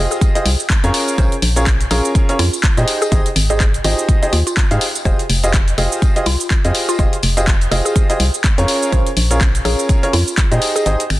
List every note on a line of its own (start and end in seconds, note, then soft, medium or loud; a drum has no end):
0.00 0.32 F4 medium
0.00 0.32 G4 medium
0.00 0.32 G#4 medium
0.00 0.32 C5 medium
0.00 0.32 D#5 loud
0.11 0.18 G#4 medium
0.11 tambourine medium
0.11 shaker medium
0.21 kick loud
0.21 closed hi-hat medium
0.21 tambourine soft
0.21 shaker medium
0.35 0.46 F4 medium
0.35 0.46 G4 medium
0.35 0.46 G#4 medium
0.35 0.46 C5 medium
0.35 0.46 D#5 loud
0.35 closed hi-hat medium
0.35 shaker soft
0.45 0.56 C2 loud
0.45 open hi-hat loud
0.45 tambourine loud
0.59 tambourine medium
0.59 shaker medium
0.69 kick loud
0.69 clap loud
0.69 closed hi-hat medium
0.69 tambourine soft
0.69 shaker medium
0.84 0.91 F2 loud
0.84 1.16 C#4 medium
0.84 1.16 F4 medium
0.84 1.16 G#4 medium
0.84 1.16 A#4 medium
0.84 1.16 C#5 loud
0.84 closed hi-hat medium
0.84 shaker soft
0.94 open hi-hat medium
0.94 tambourine loud
1.07 tambourine medium
1.07 shaker medium
1.18 1.28 A#1 loud
1.18 1.33 C#4 medium
1.18 1.33 F4 medium
1.18 1.33 G#4 medium
1.18 1.33 A#4 medium
1.18 1.36 C5 medium
1.18 1.33 C#5 loud
1.18 kick loud
1.18 closed hi-hat medium
1.18 tambourine soft
1.18 shaker medium
1.32 closed hi-hat medium
1.32 shaker soft
1.42 1.86 A#1 loud
1.42 open hi-hat loud
1.42 tambourine loud
1.56 1.67 C#4 medium
1.56 1.67 F4 medium
1.56 1.67 G#4 medium
1.56 1.67 A#4 medium
1.56 1.67 C#5 medium
1.56 closed hi-hat soft
1.56 tambourine medium
1.56 shaker medium
1.67 kick loud
1.67 clap loud
1.67 closed hi-hat medium
1.67 shaker medium
1.81 closed hi-hat medium
1.81 shaker soft
1.91 2.01 A#1 loud
1.91 2.26 C#4 medium
1.91 2.26 F4 medium
1.91 2.08 G#4 loud
1.91 2.26 G#4 medium
1.91 2.26 A#4 medium
1.91 2.26 C#5 loud
1.91 open hi-hat medium
1.91 tambourine loud
2.05 tambourine medium
2.05 shaker medium
2.15 kick loud
2.15 closed hi-hat medium
2.15 tambourine soft
2.15 shaker medium
2.29 2.40 C#4 medium
2.29 2.40 F4 medium
2.29 2.40 G#4 medium
2.29 2.40 A#4 medium
2.29 2.40 C#5 loud
2.29 closed hi-hat medium
2.29 shaker soft
2.39 2.49 F2 loud
2.39 2.57 F4 medium
2.39 open hi-hat loud
2.39 tambourine loud
2.53 tambourine medium
2.53 shaker medium
2.63 kick loud
2.63 clap loud
2.63 closed hi-hat medium
2.63 shaker medium
2.77 2.85 A#2 loud
2.77 3.09 D#4 medium
2.77 3.09 G4 medium
2.77 3.09 G#4 medium
2.77 3.09 C5 medium
2.77 3.09 D#5 loud
2.77 closed hi-hat medium
2.77 shaker soft
2.88 open hi-hat loud
2.88 tambourine loud
3.02 3.17 G#4 medium
3.02 tambourine medium
3.02 shaker medium
3.12 3.22 G#1 loud
3.12 3.26 D#4 medium
3.12 3.26 G4 medium
3.12 3.26 G#4 medium
3.12 3.26 C5 medium
3.12 3.26 D#5 loud
3.12 kick loud
3.12 closed hi-hat medium
3.12 shaker medium
3.26 closed hi-hat medium
3.26 shaker soft
3.36 3.80 G#1 loud
3.36 open hi-hat loud
3.36 tambourine loud
3.50 3.61 D#4 medium
3.50 3.61 G4 medium
3.50 3.56 G#4 medium
3.50 3.61 G#4 medium
3.50 3.61 C5 medium
3.50 3.61 D#5 medium
3.50 closed hi-hat soft
3.50 tambourine medium
3.50 shaker medium
3.60 3.69 G#4 medium
3.60 kick loud
3.60 clap loud
3.60 closed hi-hat medium
3.60 tambourine soft
3.60 shaker medium
3.74 closed hi-hat medium
3.74 shaker soft
3.84 3.95 G#1 loud
3.84 4.19 D#4 medium
3.84 4.02 F4 loud
3.84 4.19 G4 medium
3.84 4.19 G#4 medium
3.84 4.19 C5 medium
3.84 4.19 D#5 loud
3.84 open hi-hat loud
3.84 tambourine loud
3.98 tambourine medium
3.98 shaker medium
4.08 kick loud
4.08 closed hi-hat medium
4.08 tambourine soft
4.08 shaker medium
4.23 4.34 D#4 medium
4.23 4.34 G4 medium
4.23 4.34 G#4 medium
4.23 4.34 C5 medium
4.23 4.34 D#5 loud
4.23 closed hi-hat soft
4.23 shaker soft
4.33 4.43 D#2 loud
4.33 4.42 F4 medium
4.33 open hi-hat loud
4.33 tambourine medium
4.46 4.53 F4 medium
4.46 closed hi-hat soft
4.46 tambourine soft
4.46 shaker medium
4.57 kick loud
4.57 clap loud
4.57 closed hi-hat medium
4.57 shaker medium
4.71 4.78 G#2 loud
4.71 4.82 D#4 medium
4.71 4.82 G4 medium
4.71 4.82 G#4 medium
4.71 4.82 C5 medium
4.71 4.82 F5 loud
4.71 closed hi-hat medium
4.71 shaker soft
4.81 open hi-hat loud
4.81 tambourine loud
4.95 tambourine medium
4.95 shaker medium
5.05 5.16 F1 loud
5.05 5.20 F4 medium
5.05 5.20 G4 medium
5.05 5.20 G#4 medium
5.05 5.20 C5 medium
5.05 5.23 C5 medium
5.05 5.20 D#5 medium
5.05 kick loud
5.05 closed hi-hat medium
5.05 shaker medium
5.19 closed hi-hat medium
5.19 shaker soft
5.30 5.74 F1 loud
5.30 open hi-hat loud
5.30 tambourine loud
5.43 5.55 F4 medium
5.43 5.55 G4 medium
5.43 5.55 G#4 medium
5.43 5.55 C5 medium
5.43 5.55 D#5 medium
5.43 closed hi-hat soft
5.43 tambourine medium
5.43 shaker medium
5.54 kick loud
5.54 clap loud
5.54 closed hi-hat medium
5.54 shaker medium
5.68 closed hi-hat medium
5.68 shaker soft
5.78 5.88 F1 loud
5.78 6.13 F4 medium
5.78 6.13 G4 medium
5.78 5.95 G#4 loud
5.78 6.13 G#4 medium
5.78 6.13 C5 medium
5.78 6.13 D#5 loud
5.78 open hi-hat loud
5.78 tambourine medium
5.92 tambourine medium
5.92 shaker medium
6.02 kick loud
6.02 closed hi-hat medium
6.02 tambourine soft
6.02 shaker medium
6.16 6.27 F4 medium
6.16 6.27 G4 medium
6.16 6.27 G#4 medium
6.16 6.27 C5 medium
6.16 6.27 D#5 loud
6.16 closed hi-hat medium
6.16 shaker soft
6.26 6.37 C2 loud
6.26 6.44 F4 medium
6.26 open hi-hat loud
6.26 tambourine loud
6.40 tambourine medium
6.40 shaker medium
6.50 kick loud
6.50 clap loud
6.50 closed hi-hat medium
6.50 shaker medium
6.64 6.72 F2 loud
6.64 6.96 F4 medium
6.64 6.96 G4 medium
6.64 6.96 G#4 medium
6.64 6.96 C5 medium
6.64 6.96 D#5 loud
6.64 closed hi-hat medium
6.64 shaker soft
6.74 open hi-hat medium
6.74 tambourine medium
6.89 6.97 F4 medium
6.89 tambourine medium
6.89 shaker medium
6.99 7.09 F1 loud
6.99 7.16 F4 medium
6.99 7.14 F4 medium
6.99 7.14 G4 medium
6.99 7.14 G#4 medium
6.99 7.14 C5 medium
6.99 7.14 D#5 loud
6.99 kick loud
6.99 closed hi-hat medium
6.99 tambourine soft
6.99 shaker medium
7.13 closed hi-hat medium
7.13 shaker soft
7.23 7.67 F1 loud
7.23 open hi-hat loud
7.23 tambourine medium
7.37 7.48 F4 medium
7.37 7.48 G4 medium
7.37 7.48 G#4 medium
7.37 7.48 C5 medium
7.37 7.48 D#5 medium
7.37 closed hi-hat soft
7.37 tambourine medium
7.37 shaker medium
7.47 kick loud
7.47 clap loud
7.47 closed hi-hat medium
7.47 shaker medium
7.61 closed hi-hat medium
7.61 shaker soft
7.71 7.82 F1 loud
7.71 8.06 F4 loud
7.71 8.06 G4 medium
7.71 8.06 G#4 medium
7.71 7.80 G#4 medium
7.71 8.06 C5 medium
7.71 8.06 D#5 loud
7.71 open hi-hat medium
7.71 tambourine medium
7.85 7.92 G#4 medium
7.85 tambourine medium
7.85 shaker medium
7.96 kick loud
7.96 closed hi-hat medium
7.96 shaker medium
8.10 8.21 F4 medium
8.10 8.21 G4 medium
8.10 8.21 G#4 medium
8.10 8.21 C5 medium
8.10 8.21 D#5 loud
8.10 closed hi-hat medium
8.10 shaker soft
8.20 8.30 C2 loud
8.20 open hi-hat loud
8.20 tambourine medium
8.34 tambourine soft
8.34 shaker medium
8.44 kick loud
8.44 clap loud
8.44 closed hi-hat medium
8.44 tambourine soft
8.44 shaker medium
8.58 8.66 F2 loud
8.58 8.90 C#4 medium
8.58 8.90 F4 medium
8.58 8.90 G#4 medium
8.58 8.90 A#4 medium
8.58 8.90 C#5 loud
8.58 closed hi-hat medium
8.58 shaker soft
8.68 open hi-hat medium
8.68 tambourine medium
8.82 tambourine medium
8.82 shaker medium
8.92 9.03 A#1 loud
8.92 9.07 C#4 medium
8.92 9.07 F4 medium
8.92 9.07 G#4 medium
8.92 9.07 A#4 medium
8.92 9.10 C5 medium
8.92 9.07 C#5 loud
8.92 kick loud
8.92 closed hi-hat medium
8.92 shaker medium
9.06 closed hi-hat medium
9.06 shaker soft
9.17 9.61 A#1 loud
9.17 open hi-hat loud
9.17 tambourine medium
9.31 9.42 C#4 medium
9.31 9.42 F4 medium
9.31 9.42 G#4 medium
9.31 9.42 A#4 medium
9.31 9.42 C#5 medium
9.31 closed hi-hat soft
9.31 tambourine medium
9.31 shaker medium
9.40 kick loud
9.40 clap loud
9.40 closed hi-hat medium
9.40 tambourine soft
9.40 shaker medium
9.55 closed hi-hat medium
9.55 shaker soft
9.65 9.75 A#1 loud
9.65 10.00 C#4 medium
9.65 10.00 F4 medium
9.65 10.00 G#4 medium
9.65 9.82 G#4 loud
9.65 10.00 A#4 medium
9.65 10.00 C#5 loud
9.65 open hi-hat medium
9.65 tambourine medium
9.79 tambourine medium
9.79 shaker medium
9.89 kick loud
9.89 closed hi-hat medium
9.89 tambourine soft
9.89 shaker medium
10.03 10.14 C#4 medium
10.03 10.14 F4 medium
10.03 10.14 G#4 medium
10.03 10.14 A#4 medium
10.03 10.14 C#5 loud
10.03 closed hi-hat medium
10.03 shaker soft
10.13 10.24 F2 loud
10.13 10.31 F4 loud
10.13 open hi-hat loud
10.13 tambourine medium
10.28 tambourine soft
10.28 shaker medium
10.38 kick loud
10.38 clap loud
10.38 closed hi-hat medium
10.38 shaker medium
10.51 10.59 A#2 loud
10.51 10.83 D#4 medium
10.51 10.83 G4 medium
10.51 10.83 G#4 medium
10.51 10.83 C5 medium
10.51 10.83 D#5 loud
10.51 closed hi-hat medium
10.51 shaker soft
10.61 open hi-hat medium
10.61 tambourine medium
10.76 10.91 G#4 medium
10.76 tambourine medium
10.76 shaker medium
10.86 10.96 G#1 loud
10.86 11.01 D#4 medium
10.86 11.01 G4 medium
10.86 11.01 G#4 medium
10.86 11.01 C5 medium
10.86 11.01 D#5 loud
10.86 closed hi-hat medium
10.86 shaker medium
11.00 closed hi-hat medium
11.00 shaker soft
11.10 11.20 G#1 loud
11.10 finger snap medium
11.10 open hi-hat loud
11.10 tambourine medium